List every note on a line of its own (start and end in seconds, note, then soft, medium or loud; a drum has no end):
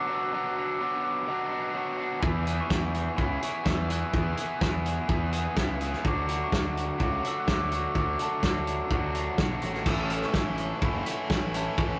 0.00 0.31 F#3 medium
0.00 0.10 B3 medium
0.00 0.20 D6 medium
0.07 0.33 B3 soft
0.07 0.33 D4 medium
0.07 0.33 F#4 medium
0.15 0.64 E6 medium
0.31 0.80 B2 medium
0.31 0.78 F#3 medium
0.31 0.59 B3 medium
0.31 0.57 D4 medium
0.31 0.55 F#4 medium
0.56 0.81 B3 soft
0.56 0.81 D4 soft
0.56 0.81 F#4 medium
0.65 0.79 E6 medium
0.79 1.28 F#3 medium
0.79 1.29 B3 medium
0.79 1.29 D4 medium
0.79 1.02 D6 medium
0.83 1.29 F#4 medium
1.03 1.48 D6 medium
1.27 1.75 B2 medium
1.27 1.73 F#3 medium
1.27 1.54 B3 medium
1.27 1.52 D4 medium
1.27 1.50 F#4 medium
1.51 1.75 B3 soft
1.51 1.75 D4 medium
1.51 1.76 F#4 medium
1.74 2.20 F#3 medium
1.74 2.00 B3 medium
1.74 1.98 D4 medium
1.74 1.96 F#4 medium
1.98 2.22 B3 soft
1.98 2.22 D4 medium
1.98 2.21 F#4 medium
2.21 2.59 E2 medium
2.21 2.69 E3 medium
2.21 2.48 B3 medium
2.21 2.46 E4 medium
2.21 2.44 G#4 medium
2.21 2.60 E6 medium
2.21 kick loud
2.45 2.70 B3 soft
2.45 2.71 E4 medium
2.45 2.72 G#4 medium
2.45 closed hi-hat medium
2.61 3.21 C#6 medium
2.70 3.07 E2 medium
2.70 3.15 E3 medium
2.70 3.17 B3 medium
2.70 3.18 E4 medium
2.70 3.19 G#4 medium
2.70 kick medium
2.70 snare medium
2.94 closed hi-hat medium
3.17 3.37 C#2 medium
3.17 3.63 E3 medium
3.17 3.42 B3 medium
3.17 3.41 E4 medium
3.17 3.39 G#4 medium
3.17 kick medium
3.22 3.45 B5 medium
3.41 3.64 B3 soft
3.41 3.65 E4 medium
3.41 3.66 G#4 medium
3.41 closed hi-hat medium
3.45 3.66 C#6 medium
3.64 4.03 E2 medium
3.64 4.12 E3 medium
3.64 3.91 B3 medium
3.64 3.90 E4 medium
3.64 3.87 G#4 medium
3.64 3.91 E6 medium
3.64 kick medium
3.64 snare medium
3.89 4.13 B3 soft
3.89 4.14 E4 medium
3.89 4.15 G#4 medium
3.89 4.59 F#6 medium
3.89 closed hi-hat medium
4.13 4.32 E2 medium
4.13 4.59 E3 medium
4.13 4.39 B3 medium
4.13 4.37 E4 medium
4.13 4.35 G#4 medium
4.13 kick loud
4.36 4.60 B3 soft
4.36 4.62 E4 soft
4.36 4.62 G#4 medium
4.36 closed hi-hat medium
4.61 4.98 E2 medium
4.61 5.07 E3 medium
4.61 5.08 B3 medium
4.61 5.09 E4 medium
4.61 5.10 G#4 medium
4.61 kick loud
4.61 snare medium
4.86 closed hi-hat medium
5.08 5.46 E2 medium
5.08 5.55 E3 medium
5.08 5.34 B3 medium
5.08 5.32 E4 medium
5.08 5.30 G#4 medium
5.08 kick medium
5.32 5.56 B3 soft
5.32 5.57 E4 soft
5.32 5.58 G#4 medium
5.32 closed hi-hat medium
5.56 5.94 C#2 medium
5.56 6.03 E3 medium
5.56 5.82 B3 medium
5.56 5.80 E4 medium
5.56 5.78 G#4 medium
5.56 kick loud
5.56 snare loud
5.79 6.04 B3 medium
5.79 6.04 E4 medium
5.79 6.03 G#4 medium
5.79 closed hi-hat medium
5.93 snare soft
6.04 6.42 D2 medium
6.04 6.98 D3 medium
6.04 6.51 F#3 medium
6.04 6.30 A3 medium
6.04 6.29 D4 medium
6.04 6.27 F#4 medium
6.04 6.43 D6 medium
6.04 kick medium
6.27 6.52 A3 soft
6.27 6.53 D4 medium
6.27 6.54 F#4 medium
6.27 closed hi-hat medium
6.44 7.04 C#6 medium
6.51 6.89 D2 medium
6.51 6.99 F#3 medium
6.51 7.00 A3 medium
6.51 7.00 D4 medium
6.51 7.02 F#4 medium
6.51 kick medium
6.51 snare loud
6.77 closed hi-hat medium
6.98 7.19 C#2 medium
6.98 7.47 D3 medium
6.98 7.47 F#3 medium
6.98 7.26 A3 medium
6.98 7.24 D4 medium
6.98 7.22 F#4 medium
6.98 kick medium
7.04 7.27 D6 medium
7.23 7.48 A3 soft
7.23 7.48 D4 medium
7.23 7.50 F#4 medium
7.23 closed hi-hat medium
7.28 7.38 E6 medium
7.40 7.50 F#6 medium
7.47 7.85 D2 medium
7.47 7.95 F#3 medium
7.47 7.73 A3 medium
7.47 7.72 D4 medium
7.47 7.70 F#4 medium
7.47 7.71 D6 medium
7.47 kick medium
7.47 snare medium
7.71 7.96 A3 medium
7.71 7.96 D4 medium
7.71 7.97 F#4 medium
7.71 closed hi-hat medium
7.75 7.98 C#6 medium
7.95 8.14 D2 medium
7.95 8.43 D3 medium
7.95 8.41 F#3 medium
7.95 8.21 A3 medium
7.95 8.20 D4 medium
7.95 8.18 F#4 medium
7.95 kick medium
7.99 8.09 D6 medium
8.19 8.43 A3 soft
8.19 8.44 D4 medium
8.19 8.45 F#4 medium
8.19 8.65 A5 medium
8.19 closed hi-hat medium
8.43 8.80 D2 medium
8.43 8.90 F#3 medium
8.43 8.91 A3 medium
8.43 8.92 D4 medium
8.43 8.93 F#4 medium
8.43 kick medium
8.43 snare loud
8.67 closed hi-hat medium
8.91 9.28 D2 medium
8.91 9.39 D3 medium
8.91 9.38 F#3 medium
8.91 9.17 A3 medium
8.91 9.15 D4 medium
8.91 9.14 F#4 medium
8.91 kick medium
9.15 9.40 A3 medium
9.15 9.40 D4 medium
9.15 9.41 F#4 medium
9.15 closed hi-hat medium
9.38 9.60 B1 medium
9.38 9.85 F#3 medium
9.38 9.65 A3 medium
9.38 9.64 D4 medium
9.38 kick loud
9.38 snare medium
9.42 9.62 F#4 medium
9.62 9.84 A1 medium
9.62 9.86 D4 medium
9.62 9.85 F#4 medium
9.62 closed hi-hat medium
9.66 9.87 A3 medium
9.74 snare soft
9.86 10.23 A1 medium
9.86 10.82 A2 medium
9.86 10.33 E3 medium
9.86 10.13 A3 medium
9.86 10.12 C#4 medium
9.86 10.24 E6 medium
9.86 kick loud
9.86 crash medium
9.90 10.10 E4 medium
10.10 10.35 A3 soft
10.10 10.36 C#4 medium
10.10 10.37 E4 medium
10.10 closed hi-hat medium
10.22 10.85 C#6 medium
10.22 snare soft
10.34 10.71 A1 medium
10.34 10.81 E3 medium
10.34 10.83 A3 medium
10.34 10.83 C#4 medium
10.34 10.84 E4 medium
10.34 kick loud
10.34 snare loud
10.58 11.05 A3 medium
10.58 closed hi-hat medium
10.81 11.00 F#1 medium
10.81 11.30 A2 medium
10.81 11.28 E3 medium
10.81 11.08 A3 medium
10.81 11.06 C#4 medium
10.81 11.04 E4 medium
10.81 11.99 F#4 medium
10.81 11.57 B5 medium
10.81 kick loud
11.05 11.30 A3 medium
11.05 11.31 C#4 medium
11.05 11.31 E4 medium
11.05 closed hi-hat medium
11.29 11.67 A1 loud
11.29 11.77 E3 medium
11.29 11.56 A3 medium
11.29 11.54 C#4 medium
11.29 11.52 E4 medium
11.29 kick loud
11.29 snare loud
11.53 11.80 A3 medium
11.53 11.80 C#4 medium
11.53 11.80 E4 medium
11.53 11.99 C#5 medium
11.53 11.79 A5 medium
11.53 closed hi-hat medium
11.78 11.96 A1 medium
11.78 11.99 A2 medium
11.78 11.99 E3 medium
11.78 11.99 A3 medium
11.78 11.99 C#4 medium
11.78 11.99 E4 medium
11.78 11.99 C#6 medium
11.78 kick loud